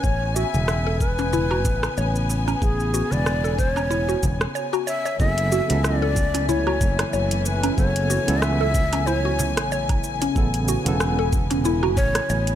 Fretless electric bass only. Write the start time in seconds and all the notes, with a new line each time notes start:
0.04 A1
0.54 E1
1.65 A1
1.98 A1
2.62 A1
3.12 E1
4.23 E1
5.20 F#1
5.70 C#2
6.81 F#1
7.14 F#1
7.78 F#1
8.28 C#2
9.57 A1
10.36 A1
10.86 E1
11.97 A1
12.30 A1